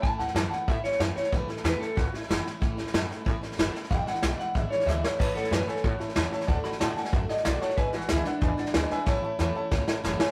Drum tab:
CC |----------------|----------------|----------------|----------------|
HH |----p-------p---|----p-------p---|----p-------p---|----p-------p---|
SD |o-ooo-o-o-ooo-oo|o-ooo-o-o-ooo-o-|o-ooo-o-o-ooo-oo|o-ooo-o-o-ooo-o-|
BD |o-------o-------|o-------o-------|o-------o-------|o-------o-------|

CC |x---------------|----------------|----------------|----------------|
HH |----p-------p---|----p-------p---|----p-------p---|----p-------p---|
SD |o-ooo-ooo-ooo-oo|o-ooo-ooo-ooo-oo|o-ooo-o-o-ooo-o-|o---o---o-o-o-o-|
BD |o-------o-------|o-------o-------|o-------o-------|o-------o-------|